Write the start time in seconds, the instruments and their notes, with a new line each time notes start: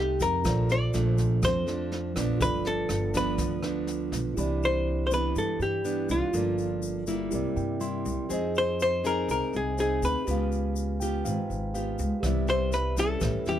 Already playing: upright bass C2, nylon-string guitar C3 A3 D#4 G4, tine electric piano C4 G4 A4 D#5, hollow-body jazz guitar G4
0.20 upright bass F2, hollow-body jazz guitar A#4, kick, snare, shaker
0.43 upright bass A#1, nylon-string guitar A#2 F3 A3 D4, tine electric piano F4 A4 C5, kick, cross-stick, snare, shaker
0.49 tine electric piano D5
0.69 hollow-body jazz guitar D5, snare, shaker
0.93 upright bass A#1, nylon-string guitar F3 A3 D4, snare, shaker
1.18 kick, snare, shaker
1.42 nylon-string guitar F2, upright bass F2, hollow-body jazz guitar C5, kick, cross-stick, snare, shaker
1.67 nylon-string guitar F3 A3 D4, snare, shaker
1.92 snare
2.16 upright bass A#1, nylon-string guitar F3 B3 D4, kick, cross-stick, snare, shaker
2.38 upright bass G1, nylon-string guitar G2, tine electric piano F4 A4, kick, snare, shaker
2.42 tine electric piano B4 D5, hollow-body jazz guitar B4
2.65 hollow-body jazz guitar A4, snare, shaker
2.89 upright bass G1, cross-stick, snare, shaker
3.14 nylon-string guitar F3 B3 D4, hollow-body jazz guitar B4, kick, snare, shaker
3.38 upright bass D2, nylon-string guitar D3, kick, snare, shaker
3.63 nylon-string guitar F3 B3 D4, cross-stick, snare, shaker
3.87 snare, shaker
4.12 upright bass B1, kick, snare, shaker
4.34 upright bass C2, nylon-string guitar C3 E3 D4, tine electric piano E4 G4, shaker
4.39 tine electric piano D5 B5
4.63 hollow-body jazz guitar C5, shaker
5.07 hollow-body jazz guitar C5
5.11 nylon-string guitar E3 B3 D4, hollow-body jazz guitar B4, shaker
5.36 upright bass G2, nylon-string guitar G2, hollow-body jazz guitar A4, shaker
5.59 upright bass G2, hollow-body jazz guitar G4, shaker
5.84 nylon-string guitar E3 B3 D4, shaker
6.09 upright bass C2, hollow-body jazz guitar F4, shaker
6.32 upright bass G1, nylon-string guitar G2 F3 A#3 D4, tine electric piano F4 A4 A#4, shaker
6.37 tine electric piano D5
6.58 shaker
6.82 shaker
7.07 nylon-string guitar G3 A#3 E4, shaker
7.29 upright bass C2, nylon-string guitar C3, tine electric piano E4 G4 A#4, shaker
7.35 tine electric piano D5
7.56 upright bass G2, tine electric piano G5, shaker
7.80 nylon-string guitar G3 A#3 E4, tine electric piano C6, shaker
8.05 upright bass C2, shaker
8.29 upright bass F2, nylon-string guitar F3 C4 D#4 G#4, tine electric piano G#4 C5, shaker
8.33 tine electric piano D#5
8.55 hollow-body jazz guitar C5, shaker
8.80 hollow-body jazz guitar C5, shaker
9.04 nylon-string guitar C4 D#4 G#4, hollow-body jazz guitar A#4, shaker
9.28 upright bass C2, nylon-string guitar C3, hollow-body jazz guitar A#4, shaker
9.53 upright bass C2, hollow-body jazz guitar G#4, shaker
9.78 nylon-string guitar C4 D#4 G#4, hollow-body jazz guitar G#4, shaker
10.02 upright bass D2, hollow-body jazz guitar B4, shaker
10.25 upright bass C#2, nylon-string guitar C#3 B3 F4 G4, tine electric piano G4 B4, shaker
10.31 tine electric piano F5
10.52 shaker
10.76 shaker
11.00 nylon-string guitar B3 F4 G4, tine electric piano G5, shaker
11.25 upright bass G#1, nylon-string guitar G#2, tine electric piano F5, shaker
11.50 upright bass G#1, shaker
11.74 nylon-string guitar B3 F4 G4, tine electric piano F5, shaker
11.99 upright bass C#2, shaker
12.20 upright bass C2, nylon-string guitar C3 G3, tine electric piano G4 B4 D5, kick, cross-stick, snare, shaker
12.24 nylon-string guitar B3 E4, tine electric piano E5
12.47 hollow-body jazz guitar C5, snare, shaker
12.72 hollow-body jazz guitar B4, snare, shaker
12.97 nylon-string guitar G3 C#4 E4, hollow-body jazz guitar A4, kick, snare, shaker
13.19 upright bass A1, nylon-string guitar A2, tine electric piano G4 B4, kick, cross-stick, snare, shaker
13.23 tine electric piano C#5 E5
13.46 upright bass E2, nylon-string guitar G3 C#4 E4, hollow-body jazz guitar G4, snare, shaker